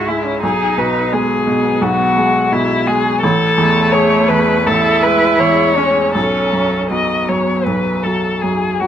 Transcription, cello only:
0.08 0.27 E4 medium
0.25 0.41 C#4 medium
0.42 1.15 D#4 medium
1.13 2.87 B3 medium
3.59 4.68 A3 loud
4.67 5.78 E4 loud
5.77 6.15 C#4 loud
6.16 6.93 C#4 medium
6.92 8.43 B3 medium

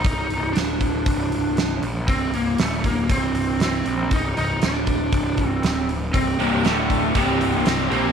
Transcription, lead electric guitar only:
0.00 0.53 D#4 medium
0.53 1.77 D4 medium
2.09 2.35 C4 medium
2.35 2.60 A#3 medium
2.60 2.83 A3 medium
2.86 3.11 A#3 medium
3.11 3.62 C4 medium
3.63 4.14 C4 medium
4.13 4.37 D#4 loud
4.38 4.64 D#4 medium
4.64 5.47 D4 medium
5.47 5.86 C4 medium
6.13 6.39 C4 medium
6.40 6.66 A#3 medium
6.66 7.16 A3 medium
7.17 7.66 C4 medium
7.67 7.90 C4 medium
7.92 8.12 C4 medium

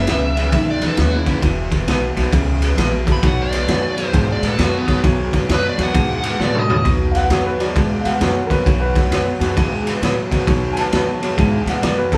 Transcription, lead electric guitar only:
0.00 0.67 E5 medium
0.70 0.83 D5 medium
0.86 0.99 A4 medium
1.01 1.16 F#4 medium
1.16 1.38 E4 medium
3.12 3.25 B5 medium
3.27 3.40 F#5 medium
3.42 4.04 D5 loud
4.04 4.28 C5 loud
4.32 4.45 D5 loud
4.47 4.63 A4 medium
4.63 4.76 F#4 medium
4.78 5.00 B3 loud
5.54 5.66 B4 medium
5.69 5.82 D5 medium
5.83 6.40 F#5 medium
6.44 6.59 D5 loud
6.59 6.86 D#5 medium

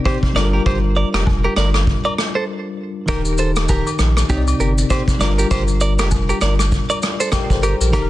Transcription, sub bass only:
0.36 0.60 G1 medium
0.66 1.04 G1 loud
1.14 1.48 F1 medium
1.57 1.95 G1 medium
3.08 3.83 D#1 loud
3.99 4.24 A#1 medium
4.30 4.54 C2 loud
4.60 4.84 G1 loud
5.21 5.45 G1 loud
5.51 6.00 G1 loud
5.99 6.33 F1 medium
6.42 6.80 G1 loud
7.50 7.75 G1 loud
7.81 7.95 A#1 medium
7.93 8.10 D#1 loud

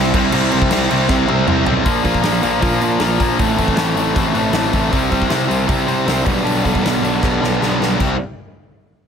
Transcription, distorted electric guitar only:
0.00 0.12 C3 medium
0.00 0.13 G3 medium
0.00 0.13 C4 medium
0.00 0.13 E4 medium
0.14 0.31 C3 loud
0.14 0.31 G3 loud
0.14 0.32 C4 loud
0.14 0.32 E4 loud
0.32 0.50 C3 loud
0.32 0.51 G3 loud
0.32 0.52 C4 loud
0.32 0.52 E4 loud
0.52 0.69 C3 loud
0.52 0.70 G3 medium
0.52 0.70 C4 medium
0.52 0.71 E4 medium
0.70 0.88 C3 medium
0.70 0.88 G3 medium
0.70 0.89 C4 medium
0.70 0.89 E4 loud
0.89 1.08 C3 medium
0.89 1.08 G3 medium
0.89 1.08 C4 medium
0.89 1.09 E4 loud
1.09 1.26 C3 loud
1.09 1.27 G3 medium
1.09 1.27 C4 loud
1.09 1.28 E4 loud
1.27 1.46 C3 medium
1.27 1.47 G3 medium
1.27 1.46 C4 medium
1.27 1.47 E4 loud
1.47 1.64 C3 medium
1.47 1.65 G3 medium
1.47 1.65 C4 medium
1.47 1.66 E4 medium
1.66 1.84 C3 medium
1.66 1.84 G3 loud
1.66 1.85 C4 medium
1.66 1.85 E4 medium
1.85 2.02 A#2 medium
1.85 2.03 F3 medium
1.85 2.03 A#3 loud
1.85 2.03 D4 loud
1.85 2.04 F4 loud
2.03 2.22 A#2 medium
2.03 2.22 F3 medium
2.03 2.22 A#3 medium
2.03 2.22 D4 medium
2.03 2.23 F4 medium
2.23 2.40 A#2 medium
2.23 2.41 F3 medium
2.23 2.41 A#3 medium
2.23 2.41 D4 loud
2.23 2.41 F4 loud
2.41 2.59 A#2 medium
2.41 2.60 F3 medium
2.41 2.59 A#3 medium
2.41 2.60 D4 medium
2.41 2.61 F4 medium
2.60 2.80 A#2 medium
2.60 2.80 F3 medium
2.60 2.80 A#3 medium
2.60 2.81 D4 medium
2.60 2.81 F4 medium
2.81 2.98 A#2 medium
2.81 2.99 F3 medium
2.81 2.99 A#3 loud
2.81 2.99 D4 medium
2.81 3.00 F4 loud
2.99 3.17 A#2 medium
2.99 3.18 F3 medium
2.99 3.18 A#3 medium
2.99 3.18 D4 medium
2.99 3.19 F4 medium
3.19 3.37 A#2 medium
3.19 3.38 F3 medium
3.19 3.38 A#3 medium
3.19 3.38 D4 medium
3.19 3.38 F4 medium
3.38 3.56 A2 medium
3.38 3.57 E3 loud
3.38 3.56 A3 loud
3.38 3.58 C4 medium
3.38 3.58 E4 medium
3.57 3.76 A2 medium
3.57 3.77 E3 medium
3.57 3.77 A3 medium
3.57 3.78 C4 medium
3.57 3.78 E4 medium
3.77 3.96 A2 medium
3.77 3.96 E3 medium
3.77 3.97 A3 loud
3.77 3.97 C4 loud
3.77 3.97 E4 loud
3.97 4.13 A2 medium
3.97 4.13 E3 medium
3.97 4.14 A3 medium
3.97 4.14 C4 medium
3.97 4.15 E4 medium
4.14 4.31 A2 medium
4.14 4.32 E3 medium
4.14 4.33 A3 medium
4.14 4.33 C4 medium
4.14 4.33 E4 medium
4.33 4.52 A2 medium
4.33 4.53 E3 medium
4.33 4.53 A3 medium
4.33 4.53 C4 medium
4.33 4.54 E4 loud
4.53 4.72 A2 medium
4.53 4.72 E3 medium
4.53 4.72 A3 medium
4.53 4.72 C4 medium
4.53 4.73 E4 medium
4.73 4.91 A2 medium
4.73 4.90 E3 medium
4.73 4.90 A3 medium
4.73 4.90 C4 medium
4.73 4.90 E4 medium
4.90 5.08 C3 medium
4.90 5.10 G3 medium
4.90 5.09 C4 loud
4.90 5.09 E4 loud
5.09 5.27 C3 medium
5.09 5.29 G3 medium
5.09 5.29 C4 medium
5.09 5.29 E4 loud
5.28 5.46 C3 loud
5.28 5.47 G3 medium
5.28 5.47 C4 medium
5.28 5.48 E4 loud
5.48 5.66 C3 medium
5.48 5.67 G3 medium
5.48 5.67 C4 medium
5.48 5.67 E4 medium
5.67 5.85 C3 medium
5.67 5.87 G3 medium
5.67 5.87 C4 medium
5.67 5.87 E4 medium
5.87 6.04 C3 medium
5.87 6.05 G3 medium
5.87 6.05 C4 loud
5.87 6.05 E4 loud
6.05 6.23 C3 medium
6.05 6.24 G3 medium
6.05 6.25 C4 medium
6.05 6.25 E4 medium
6.24 6.42 B2 medium
6.24 6.43 G3 medium
6.24 6.43 B3 loud
6.24 6.43 D4 loud
6.44 6.62 B2 medium
6.44 6.61 G3 medium
6.44 6.62 B3 loud
6.44 6.63 D4 medium
6.62 6.80 B2 medium
6.62 6.81 G3 medium
6.62 6.81 B3 medium
6.62 6.82 D4 medium
6.81 7.01 B2 medium
6.81 7.01 G3 medium
6.81 7.02 B3 medium
6.81 7.02 D4 medium
7.02 7.21 B2 medium
7.02 7.21 G3 medium
7.02 7.21 B3 medium
7.02 7.21 D4 medium
7.22 7.40 B2 medium
7.22 7.40 G3 medium
7.22 7.41 B3 medium
7.22 7.41 D4 medium
7.42 7.60 B2 medium
7.42 7.61 G3 medium
7.42 7.61 B3 medium
7.42 7.61 D4 medium
7.61 7.79 B2 medium
7.61 7.78 G3 medium
7.61 7.79 B3 medium
7.61 7.79 D4 medium
7.80 7.98 B2 medium
7.80 7.98 G3 medium
7.80 7.99 B3 medium
7.80 7.99 D4 medium
7.99 8.15 C3 medium
7.99 8.15 G3 medium
7.99 8.15 C4 medium
7.99 8.15 E4 loud

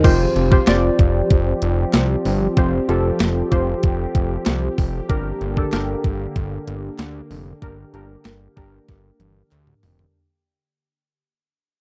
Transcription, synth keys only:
0.04 0.39 F4 medium
0.04 0.40 G4 medium
0.04 0.40 C5 loud
0.51 0.63 F4 medium
0.51 0.64 G4 medium
0.51 0.64 C5 loud
0.67 1.61 F4 medium
0.67 1.62 G4 medium
0.67 1.62 D5 loud
2.57 2.80 F4 medium
2.57 2.81 G4 medium
2.57 2.81 C5 loud
2.89 3.36 F4 medium
2.89 3.36 G4 medium
2.89 3.36 A4 loud
3.51 4.46 F4 medium
3.51 4.46 G4 medium
3.51 4.46 C5 loud
5.09 5.45 D4 medium
5.09 5.45 G4 medium
5.09 5.45 A#4 loud
5.57 5.69 D4 medium
5.57 5.69 G4 medium
5.57 5.69 A4 loud
5.72 6.67 D4 medium
5.72 6.67 G4 medium
5.72 6.67 A#4 medium
7.62 7.86 D4 medium
7.62 7.86 G4 medium
7.62 7.86 A#4 medium
7.94 8.41 D4 medium
7.94 8.41 G4 medium
7.94 8.41 A#4 medium
8.56 9.51 D4 medium
8.56 9.51 G4 medium
8.56 9.51 A#4 medium

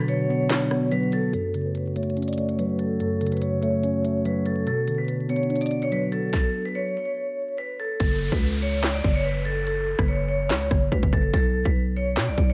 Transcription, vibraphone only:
0.09 0.28 C#5 medium
0.30 0.89 C#5 medium
0.92 1.11 B4 medium
1.13 1.32 A4 medium
1.33 1.63 A4 loud
1.66 1.75 B4 medium
1.96 2.26 C#5 medium
2.27 2.47 D5 medium
2.49 2.58 C#5 medium
2.59 2.78 B4 medium
2.79 2.99 A4 medium
3.00 3.30 A4 medium
3.32 3.41 B4 medium
3.41 3.60 C#5 medium
3.62 4.21 C#5 medium
4.25 4.45 B4 medium
4.46 4.66 A4 medium
4.67 4.97 A4 loud
4.98 5.08 B4 medium
5.30 5.59 C#5 medium
5.61 5.81 D5 medium
5.83 5.92 C#5 medium
5.92 6.12 B4 medium
6.12 6.32 A4 medium
6.33 6.63 A4 medium
6.65 6.75 B4 medium
6.75 6.95 C#5 medium
6.97 7.55 C#5 medium
7.58 7.78 B4 medium
7.80 7.99 A4 medium
8.00 8.30 A4 loud
8.32 8.41 B4 medium
8.62 8.92 C#5 medium
8.94 9.14 D5 medium
9.15 9.25 C#5 medium
9.25 9.45 B4 medium
9.45 9.65 A4 medium
9.67 9.97 A4 medium
9.99 10.08 B4 medium
10.08 10.27 C#5 medium
10.28 10.88 C#5 medium
10.92 11.12 B4 medium
11.13 11.32 A4 medium
11.34 11.64 A4 loud
11.65 11.74 B4 medium
11.96 12.26 C#5 medium
12.28 12.48 D5 medium
12.50 12.53 C#5 medium

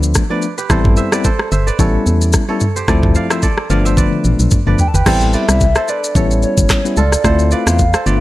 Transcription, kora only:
0.00 0.39 A4 medium
0.00 0.31 B4 medium
0.00 0.30 D5 medium
0.00 0.52 E5 medium
0.30 0.57 B4 medium
0.30 1.12 D5 medium
0.58 2.00 G4 medium
0.58 0.76 B4 medium
0.70 1.25 A4 medium
0.70 0.98 C5 medium
0.97 1.19 C5 medium
0.97 1.51 E5 medium
1.12 1.30 B4 medium
1.12 1.66 D5 medium
1.24 1.79 A4 medium
1.24 1.52 C5 medium
1.52 1.74 C5 medium
1.52 2.55 E5 medium
1.67 2.82 B4 medium
1.67 1.85 D5 medium
1.79 2.49 A4 medium
1.79 2.48 C#5 medium
2.49 2.89 A4 medium
2.49 2.82 C#5 medium
2.76 4.18 G4 medium
2.76 3.31 C5 medium
2.88 3.43 A4 medium
2.88 3.16 D5 medium
3.16 3.42 D5 medium
3.16 3.37 F5 medium
3.31 3.86 C5 medium
3.31 3.76 E5 medium
3.43 4.75 A4 medium
3.43 3.70 D5 medium
3.70 3.97 D5 medium
3.70 3.91 F5 medium
3.85 4.04 C5 medium
3.85 4.89 E5 medium
3.98 4.67 B4 medium
3.98 4.67 D5 medium
4.67 4.94 B4 medium
4.67 5.33 D5 medium
4.94 6.36 G4 medium
4.94 5.13 B4 medium
5.07 5.76 A4 medium
5.07 5.41 C5 medium
5.34 5.82 B4 medium
5.34 5.88 D5 medium
5.76 6.16 A4 medium
5.76 5.95 C5 medium
5.88 7.12 B4 medium
5.88 6.21 D5 medium
6.15 6.97 A4 medium
6.15 7.31 C#5 medium
6.97 8.20 F4 medium
6.97 7.25 A4 medium
7.25 7.94 A4 medium
7.25 7.59 C5 loud
7.52 8.00 B4 medium
7.52 8.06 D5 medium
7.94 8.20 A4 medium
7.94 8.13 C5 medium
8.06 8.20 B4 medium
8.06 8.20 D5 medium

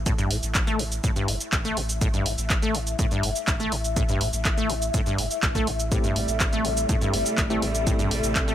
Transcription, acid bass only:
0.06 0.13 A2 loud
0.18 0.32 G2 loud
0.31 0.37 A2 medium
0.67 0.81 A3 loud
0.80 0.84 A2 medium
1.04 1.11 A2 loud
1.16 1.30 G2 loud
1.28 1.35 A2 medium
1.65 1.79 A3 loud
1.77 1.81 A2 medium
2.02 2.08 A2 loud
2.14 2.27 G2 loud
2.26 2.33 A2 medium
2.62 2.76 A3 loud
2.75 2.79 A2 medium
2.99 3.06 A2 loud
3.11 3.25 G2 loud
3.23 3.30 A2 medium
3.60 3.74 A3 loud
3.72 3.76 A2 medium
3.96 4.03 A2 loud
4.09 4.22 G2 loud
4.21 4.28 A2 medium
4.57 4.71 A3 loud
4.70 4.74 A2 medium
4.94 5.01 A2 loud
5.06 5.20 G2 loud
5.18 5.25 A2 medium
5.55 5.69 A3 loud
5.67 5.71 A2 medium
5.92 5.98 A2 loud
6.04 6.18 G2 loud
6.16 6.20 A2 medium
6.53 6.66 A3 loud
6.65 6.69 A2 medium
6.89 6.96 A2 loud
7.01 7.15 G2 loud
7.14 7.18 A2 medium
7.50 7.64 A3 loud
7.62 7.66 A2 medium
7.87 7.94 A2 loud
7.99 8.13 G2 loud
8.11 8.15 A2 medium
8.48 8.55 A3 loud

